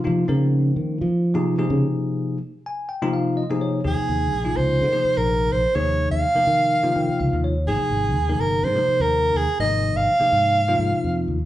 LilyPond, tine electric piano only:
<<
  \new Staff \with { instrumentName = "Tine electric piano" } { \time 4/4 \key aes \major \tempo 4 = 126 r1 | r4. aes''8 g''8 f''8 ees''8 des''8 | r1 | r2 r8 g''8 f''8 des''8 |
r1 | r1 | }
  \new Staff \with { instrumentName = "Tine electric piano" } { \time 4/4 \key aes \major <c f bes ees' f'>8 <f bes c' ees' bes'>4.~ <f bes c' ees' bes'>16 r8 <c f bes ees' aes'>8 <c f bes ees' aes'>8.~ | <c f bes ees' aes'>4 r4 r16 <c f bes ees' f'>8. r16 <c f bes ees' aes'>8 r16 | <c f bes ees' aes'>4 r16 <c f bes ees' f'>8. r16 <c f bes ees' aes'>4. r16 | <c f bes ees' aes'>4 r16 <c f bes ees' bes'>8. r16 <c f bes ees' f'>4. r16 |
<c f bes ees' aes'>4 r16 <c f bes ees' bes'>8. r16 <c f bes ees' bes'>4. r16 | <c f bes ees' bes'>4 r16 <c f bes ees' aes'>8. r16 <c f bes ees' f'>4. r16 | }
>>